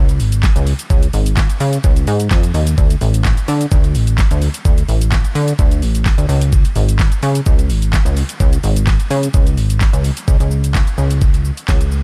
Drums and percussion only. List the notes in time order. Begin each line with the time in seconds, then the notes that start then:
0.09 closed hi-hat, shaker
0.20 open hi-hat, shaker
0.32 closed hi-hat, shaker
0.43 kick, snare, clap, shaker
0.56 closed hi-hat, shaker
0.67 open hi-hat, shaker
0.79 closed hi-hat, shaker
0.90 kick, shaker
1.03 closed hi-hat, shaker
1.13 open hi-hat, shaker
1.26 closed hi-hat, shaker
1.37 kick, snare, clap, shaker
1.50 closed hi-hat, shaker
1.60 open hi-hat, shaker
1.73 closed hi-hat, shaker
1.84 kick, shaker
1.96 closed hi-hat, shaker
2.07 open hi-hat, shaker
2.20 closed hi-hat, shaker
2.31 kick, snare, clap, shaker
2.43 closed hi-hat, shaker
2.54 open hi-hat, shaker
2.67 closed hi-hat, shaker
2.78 kick, shaker
2.90 closed hi-hat, shaker
3.01 open hi-hat, shaker
3.14 closed hi-hat, shaker
3.25 kick, snare, clap, shaker
3.37 closed hi-hat, shaker
3.48 open hi-hat, shaker
3.61 closed hi-hat, shaker
3.71 kick, shaker
3.84 closed hi-hat, shaker
3.95 open hi-hat, shaker
4.07 closed hi-hat, shaker
4.18 kick, snare, clap, shaker
4.31 closed hi-hat, shaker
4.42 open hi-hat, shaker
4.54 closed hi-hat, shaker
4.65 kick, shaker
4.78 closed hi-hat, shaker
4.88 open hi-hat, shaker
5.01 closed hi-hat, shaker
5.12 kick, snare, clap, shaker
5.25 closed hi-hat, shaker
5.35 open hi-hat, shaker
5.48 closed hi-hat, shaker
5.59 kick, shaker
5.71 closed hi-hat, shaker
5.82 open hi-hat, shaker
5.95 closed hi-hat, shaker
6.06 kick, snare, clap, shaker
6.18 closed hi-hat, shaker
6.29 open hi-hat, shaker
6.41 closed hi-hat, shaker
6.52 kick, shaker
6.65 closed hi-hat, shaker
6.75 open hi-hat, shaker
6.89 closed hi-hat, shaker
6.99 kick, snare, clap, shaker
7.12 closed hi-hat, shaker
7.23 open hi-hat, shaker
7.35 closed hi-hat, shaker
7.46 kick, shaker
7.59 closed hi-hat, shaker
7.70 open hi-hat, shaker
7.82 closed hi-hat, shaker
7.93 kick, snare, clap, shaker
8.06 closed hi-hat, shaker
8.17 open hi-hat, shaker
8.29 closed hi-hat, shaker
8.40 kick, shaker
8.53 closed hi-hat, shaker
8.63 open hi-hat, shaker
8.76 closed hi-hat, shaker
8.87 kick, snare, clap, shaker
9.00 closed hi-hat, shaker
9.10 open hi-hat, shaker
9.23 closed hi-hat, shaker
9.34 kick, shaker
9.47 closed hi-hat, shaker
9.57 open hi-hat, shaker
9.70 closed hi-hat, shaker
9.81 kick, snare, clap, shaker
9.94 closed hi-hat, shaker
10.04 open hi-hat, shaker
10.17 closed hi-hat, shaker
10.28 kick, shaker
10.40 closed hi-hat, shaker
10.51 shaker
10.64 closed hi-hat, shaker
10.75 kick, snare, clap, shaker
10.87 closed hi-hat, shaker
10.98 shaker
11.11 closed hi-hat, shaker
11.21 kick, shaker
11.34 closed hi-hat, shaker
11.45 shaker
11.57 closed hi-hat, shaker
11.68 kick, snare, clap, shaker
11.81 closed hi-hat, shaker
11.92 shaker